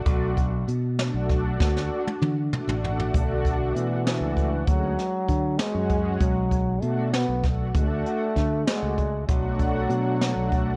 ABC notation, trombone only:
X:1
M:5/8
L:1/8
Q:1/4=98
K:Bdor
V:1 name="Trombone" clef=bass
z4 z | z4 z | D,2 E,3 | F,3 G,2 |
F,2 A, B, z | A,3 G,2 | F,4- F, |]